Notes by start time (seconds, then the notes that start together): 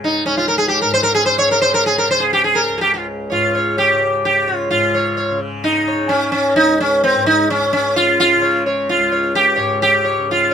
Already playing: C#2 G#2 C#3
0.04 D#4
0.25 C#2 C#4
0.37 F4
0.48 A#4
0.58 G#4
0.68 G4
0.81 G#2 A#4
0.94 C5
1.03 A#4
1.14 G#4
1.26 C5
1.38 C#5
1.48 C#3 A#4
1.61 C5
1.74 A#4
1.86 G#4
1.98 A#4
2.08 C#3 C5
2.20 G#4
2.33 G4
2.44 G#4
2.55 A#4
2.70 C#2
2.78 G4 G#4
2.94 F4
3.30 G#2 F4 C#5
3.55 C#5
3.78 G4 C#5
3.92 C#3
4.25 G4
4.48 C#5
4.52 C#3
4.56 F4
4.70 G#2 F4
4.94 C#5
5.17 C#5
5.31 C#3
5.64 D#4
5.88 C#5
5.94 C#3
6.09 C#4
6.32 C#4
6.54 C#2 D#4
6.80 C#4
7.04 C4
7.16 G#2
7.26 D#4
7.50 C#4
7.73 C#3 C#4
7.96 F4
8.20 F4
8.35 C#3
8.42 C#5
8.66 C#5
8.89 F4
8.97 C#2
9.12 C#5
9.35 G4
9.56 G#2 C#5
9.82 G4
10.04 C#5
10.18 C#3
10.31 F4
10.51 C#5